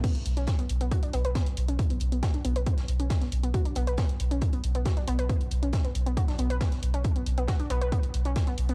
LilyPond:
<<
  \new Staff \with { instrumentName = "Synth arpeggio sound" } { \time 4/4 \key b \minor \tempo 4 = 137 b16 r8 cis'16 r16 b16 r16 b16 fis'16 d'16 b16 b'16 b16 r8 cis'16 | r16 b16 r16 b16 fis'16 d'16 b16 b'16 b16 r8 cis'16 r16 b16 r16 b16 | fis'16 d'16 b16 b'16 b16 r8 cis'16 r16 b16 r16 b16 fis'16 d'16 b16 b'16 | b16 r8 cis'16 r16 b16 r16 b16 fis'16 d'16 b16 b'16 b16 r8 cis'16 |
r16 b16 r16 b16 fis'16 d'16 b16 b'16 b16 r8 cis'16 r16 b16 r16 b16 | }
  \new Staff \with { instrumentName = "Sub bass" } { \clef bass \time 4/4 \key b \minor r16 b,,16 b,,16 b,,16 r16 b,,16 b,,16 b,,16 r16 b,,16 b,,16 b,,16 r16 b,,16 b,,16 b,,16 | r16 b,,16 b,,16 b,,16 r16 b,,16 b,,16 b,,16 r16 b,,16 b,,16 b,,16 r16 b,,16 b,,16 b,,16 | r16 b,,16 b,,16 b,,16 r16 b,,16 b,,16 b,,16 r16 b,,16 b,,16 b,,16 r16 b,,16 b,,16 b,,16 | r16 b,,16 b,,16 b,,16 r16 b,,16 b,,16 b,,16 r16 b,,16 b,,16 b,,16 r16 b,,16 b,,16 b,,16 |
r16 b,,16 b,,16 b,,16 r16 b,,16 b,,16 b,,16 r16 b,,16 b,,16 b,,16 r16 b,,16 b,,16 b,,16 | }
  \new DrumStaff \with { instrumentName = "Drums" } \drummode { \time 4/4 <cymc hh bd>16 hh16 <hh hho>16 hh16 <hh bd sn>16 hh16 <hh hho>16 hh16 <hh bd>16 hh16 <hh hho>16 hh16 <hh bd sn>16 hh16 <hh hho>16 hh16 | <hh bd>16 hh16 <hh hho>16 hh16 <hh bd sn>16 hh16 <hh hho>16 hh16 <hh bd>16 <hh sn>16 <hh hho>16 hh16 <hh bd sn>16 <hh sn>16 <hh hho>16 hh16 | <hh bd>16 hh16 <hh hho>16 hh16 <hh bd sn>16 hh16 <hh hho>16 hh16 <hh bd>16 hh16 <hh hho>16 hh16 <hh bd sn>16 hh16 <hh hho>16 hh16 | <hh bd>16 hh16 <hh hho>16 hh16 <hh bd sn>16 hh16 <hh hho>16 hh16 <hh bd>16 <hh sn>16 <hh hho>16 hh16 <hh bd sn>16 <hh sn>16 <hh hho>16 hh16 |
<hh bd>16 hh16 <hh hho>16 hh16 <hh bd sn>16 hh16 <hh hho>16 hh16 <hh bd>16 hh16 <hh hho>16 hh16 <hh bd sn>16 hh16 <hh hho>16 hh16 | }
>>